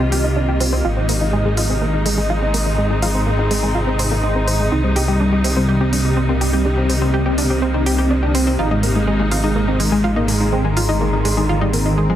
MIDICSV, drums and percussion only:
0, 0, Header, 1, 2, 480
1, 0, Start_track
1, 0, Tempo, 483871
1, 840, Time_signature, 4, 2, 24, 8
1, 12059, End_track
2, 0, Start_track
2, 0, Title_t, "Drums"
2, 120, Note_on_c, 9, 46, 98
2, 219, Note_off_c, 9, 46, 0
2, 600, Note_on_c, 9, 46, 94
2, 699, Note_off_c, 9, 46, 0
2, 1080, Note_on_c, 9, 46, 98
2, 1179, Note_off_c, 9, 46, 0
2, 1560, Note_on_c, 9, 46, 97
2, 1659, Note_off_c, 9, 46, 0
2, 2040, Note_on_c, 9, 46, 99
2, 2139, Note_off_c, 9, 46, 0
2, 2520, Note_on_c, 9, 46, 100
2, 2619, Note_off_c, 9, 46, 0
2, 3000, Note_on_c, 9, 46, 98
2, 3099, Note_off_c, 9, 46, 0
2, 3480, Note_on_c, 9, 46, 99
2, 3580, Note_off_c, 9, 46, 0
2, 3960, Note_on_c, 9, 46, 105
2, 4059, Note_off_c, 9, 46, 0
2, 4440, Note_on_c, 9, 46, 93
2, 4539, Note_off_c, 9, 46, 0
2, 4920, Note_on_c, 9, 46, 89
2, 5020, Note_off_c, 9, 46, 0
2, 5400, Note_on_c, 9, 46, 101
2, 5499, Note_off_c, 9, 46, 0
2, 5880, Note_on_c, 9, 46, 99
2, 5979, Note_off_c, 9, 46, 0
2, 6360, Note_on_c, 9, 46, 92
2, 6459, Note_off_c, 9, 46, 0
2, 6840, Note_on_c, 9, 46, 90
2, 6939, Note_off_c, 9, 46, 0
2, 7320, Note_on_c, 9, 46, 96
2, 7419, Note_off_c, 9, 46, 0
2, 7800, Note_on_c, 9, 46, 95
2, 7899, Note_off_c, 9, 46, 0
2, 8280, Note_on_c, 9, 46, 93
2, 8379, Note_off_c, 9, 46, 0
2, 8760, Note_on_c, 9, 46, 90
2, 8860, Note_off_c, 9, 46, 0
2, 9240, Note_on_c, 9, 46, 92
2, 9339, Note_off_c, 9, 46, 0
2, 9721, Note_on_c, 9, 46, 90
2, 9820, Note_off_c, 9, 46, 0
2, 10201, Note_on_c, 9, 46, 93
2, 10300, Note_off_c, 9, 46, 0
2, 10680, Note_on_c, 9, 46, 94
2, 10780, Note_off_c, 9, 46, 0
2, 11160, Note_on_c, 9, 46, 92
2, 11259, Note_off_c, 9, 46, 0
2, 11640, Note_on_c, 9, 46, 98
2, 11740, Note_off_c, 9, 46, 0
2, 12059, End_track
0, 0, End_of_file